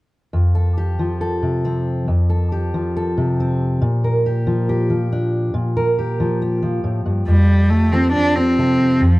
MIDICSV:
0, 0, Header, 1, 3, 480
1, 0, Start_track
1, 0, Key_signature, -1, "major"
1, 0, Tempo, 433526
1, 375, Time_signature, 4, 2, 24, 8
1, 10181, End_track
2, 0, Start_track
2, 0, Title_t, "Steel-string acoustic guitar"
2, 0, Program_c, 0, 25
2, 366, Note_on_c, 0, 41, 55
2, 606, Note_on_c, 0, 69, 49
2, 858, Note_on_c, 0, 67, 46
2, 1098, Note_on_c, 0, 53, 47
2, 1334, Note_off_c, 0, 69, 0
2, 1338, Note_on_c, 0, 69, 46
2, 1578, Note_on_c, 0, 48, 46
2, 1825, Note_on_c, 0, 60, 45
2, 2275, Note_off_c, 0, 69, 0
2, 2277, Note_off_c, 0, 60, 0
2, 2288, Note_off_c, 0, 41, 0
2, 2301, Note_on_c, 0, 41, 60
2, 2303, Note_off_c, 0, 48, 0
2, 2334, Note_off_c, 0, 67, 0
2, 2542, Note_on_c, 0, 69, 45
2, 2791, Note_on_c, 0, 67, 45
2, 3030, Note_off_c, 0, 53, 0
2, 3035, Note_on_c, 0, 53, 46
2, 3266, Note_off_c, 0, 69, 0
2, 3284, Note_on_c, 0, 69, 44
2, 3516, Note_on_c, 0, 48, 50
2, 3766, Note_on_c, 0, 60, 42
2, 4208, Note_off_c, 0, 69, 0
2, 4209, Note_off_c, 0, 60, 0
2, 4220, Note_off_c, 0, 41, 0
2, 4225, Note_on_c, 0, 46, 61
2, 4233, Note_off_c, 0, 48, 0
2, 4476, Note_on_c, 0, 70, 46
2, 4713, Note_off_c, 0, 67, 0
2, 4717, Note_on_c, 0, 67, 45
2, 4942, Note_off_c, 0, 53, 0
2, 4946, Note_on_c, 0, 53, 52
2, 5189, Note_off_c, 0, 70, 0
2, 5194, Note_off_c, 0, 67, 0
2, 5194, Note_on_c, 0, 67, 49
2, 5411, Note_off_c, 0, 53, 0
2, 5424, Note_on_c, 0, 53, 47
2, 5674, Note_on_c, 0, 62, 43
2, 6116, Note_off_c, 0, 46, 0
2, 6121, Note_off_c, 0, 62, 0
2, 6132, Note_on_c, 0, 46, 64
2, 6380, Note_off_c, 0, 67, 0
2, 6384, Note_on_c, 0, 70, 54
2, 6626, Note_on_c, 0, 67, 47
2, 6659, Note_off_c, 0, 53, 0
2, 6864, Note_on_c, 0, 53, 46
2, 7094, Note_off_c, 0, 67, 0
2, 7103, Note_off_c, 0, 70, 0
2, 7107, Note_on_c, 0, 67, 44
2, 7322, Note_off_c, 0, 53, 0
2, 7336, Note_on_c, 0, 53, 50
2, 7568, Note_off_c, 0, 46, 0
2, 7572, Note_on_c, 0, 45, 47
2, 7808, Note_off_c, 0, 45, 0
2, 7813, Note_on_c, 0, 43, 54
2, 8028, Note_off_c, 0, 53, 0
2, 8054, Note_off_c, 0, 43, 0
2, 8058, Note_on_c, 0, 41, 57
2, 8540, Note_off_c, 0, 67, 0
2, 8554, Note_on_c, 0, 67, 44
2, 8774, Note_on_c, 0, 53, 45
2, 8780, Note_on_c, 0, 69, 51
2, 9032, Note_on_c, 0, 60, 43
2, 9264, Note_off_c, 0, 67, 0
2, 9268, Note_on_c, 0, 67, 42
2, 9497, Note_off_c, 0, 69, 0
2, 9501, Note_on_c, 0, 48, 48
2, 9513, Note_on_c, 0, 69, 51
2, 9740, Note_off_c, 0, 67, 0
2, 9745, Note_on_c, 0, 67, 49
2, 9953, Note_off_c, 0, 60, 0
2, 9954, Note_off_c, 0, 69, 0
2, 9964, Note_off_c, 0, 41, 0
2, 9977, Note_off_c, 0, 48, 0
2, 9977, Note_on_c, 0, 41, 58
2, 10010, Note_off_c, 0, 67, 0
2, 10181, Note_off_c, 0, 41, 0
2, 10181, Note_off_c, 0, 53, 0
2, 10181, End_track
3, 0, Start_track
3, 0, Title_t, "Cello"
3, 0, Program_c, 1, 42
3, 8057, Note_on_c, 1, 55, 70
3, 8523, Note_on_c, 1, 57, 69
3, 8540, Note_off_c, 1, 55, 0
3, 8770, Note_on_c, 1, 60, 70
3, 8787, Note_off_c, 1, 57, 0
3, 8989, Note_off_c, 1, 60, 0
3, 8995, Note_on_c, 1, 62, 86
3, 9251, Note_on_c, 1, 60, 75
3, 9267, Note_off_c, 1, 62, 0
3, 9969, Note_on_c, 1, 53, 72
3, 9985, Note_off_c, 1, 60, 0
3, 10181, Note_off_c, 1, 53, 0
3, 10181, End_track
0, 0, End_of_file